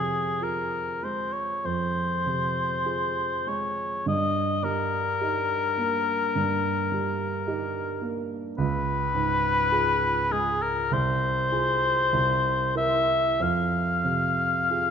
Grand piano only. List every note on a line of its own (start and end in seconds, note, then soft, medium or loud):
0.00 1.60 F2 soft
0.00 0.78 C3 soft
0.41 0.98 F4 soft
0.41 0.98 G#4 soft
1.03 2.00 G#3 soft
1.65 4.02 F2 soft
2.26 3.23 C3 soft
2.85 3.42 F4 soft
2.85 3.42 G#4 soft
3.47 4.06 G#3 soft
4.06 6.30 G2 medium
4.63 5.54 G3 soft
5.21 5.74 D#4 soft
5.21 5.73 G4 soft
5.78 6.68 A#3 soft
6.35 8.53 G2 medium
6.92 7.80 G3 soft
7.47 7.98 D#4 soft
7.47 7.98 G4 medium
8.02 8.57 A#3 soft
8.58 10.87 C#2 medium
9.14 10.07 G#2 medium
9.71 10.27 F4 soft
9.71 10.27 G#4 soft
10.31 10.91 G#3 medium
10.91 12.10 C2 medium
11.52 12.09 F4 soft
11.52 12.10 G#4 medium
12.12 13.36 C2 medium
12.75 13.36 E4 soft
12.75 13.36 A#4 medium
13.40 14.90 F2 medium
14.04 14.90 C3 soft
14.70 14.90 F4 soft
14.70 14.90 G#4 soft